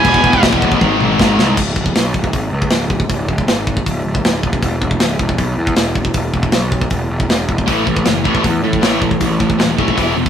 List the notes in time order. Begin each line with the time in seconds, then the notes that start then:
Already playing: B4 G#5
0.05 E1 E2 B2 E3, kick, crash
0.12 E2 B2, kick
0.19 E2 B2
0.24 E1 B2, kick
0.28 E2
0.33 E2 B2, kick
0.43 E1 E2 B2, kick, snare, crash
0.50 E2 B2, kick
0.57 E2 B2
0.62 A1 E2, kick
0.66 B2
0.72 E2 B2, kick
0.81 G#1 G#2 D#3 G#3, kick, high tom
0.88 G#2 D#3
0.96 G#2 D#3
1.01 G#2, mid tom
1.05 D#3
1.11 G#2 D#3
1.19 G#1 G#2 D#3, kick, snare
1.26 G#2 D#3
1.33 G#2 D#3
1.39 C2 G#2 D#3, snare
1.48 G#2 D#3
1.57 C#1, kick, crash
1.76 C#1, kick
1.86 kick
1.95 B1, snare, open hi-hat
2.14 C#1, kick
2.24 kick
2.33 G#1, kick, open hi-hat
2.52 C#2
2.62 kick
2.70 C#1, snare, open hi-hat
2.90 kick
3.00 kick
3.10 C#1, kick, open hi-hat
3.29 C#1, kick
3.38 kick
3.47 G#1, snare, open hi-hat
3.67 kick
3.77 kick
3.86 C#1, kick, open hi-hat
4.05 C#1
4.15 kick
4.24 C#1, snare, open hi-hat
4.43 D#1, kick
4.53 kick
4.63 E1, kick, open hi-hat
4.82 E1, kick
4.91 kick
5.00 C#1, snare, open hi-hat
5.19 E1, kick
5.29 kick
5.38 B1, kick, open hi-hat
5.57 E2
5.67 kick
5.76 E1, snare, open hi-hat
5.95 kick
6.05 kick
6.14 E1, kick, open hi-hat
6.34 E1, kick
6.43 kick
6.52 B1, snare, open hi-hat
6.72 kick
6.81 kick
6.90 E1, kick, open hi-hat
7.10 E1
7.20 kick
7.29 E1, snare, open hi-hat
7.49 E1, kick
7.58 kick
7.66 A1 A2 E3 A3, kick, open hi-hat
7.85 A1 A2 E3, kick
7.96 kick
8.05 F#1 A2 E3, snare, open hi-hat
8.24 A1 A2 E3 A3, kick
8.35 kick
8.44 E2 A2 E3, kick, open hi-hat
8.63 A2 E3
8.73 kick
8.81 A1 A2 E3 A3, snare, open hi-hat
9.00 A2 E3, kick
9.11 kick
9.20 A1 A2 E3, kick, open hi-hat
9.39 A1 A2 E3, kick
9.50 kick
9.58 D#1 A2 E3, snare, open hi-hat
9.78 A2 E3 A3, kick
9.88 kick
9.96 E1 E2 B2 E3, kick, open hi-hat
10.15 E1 E2 B2
10.26 kick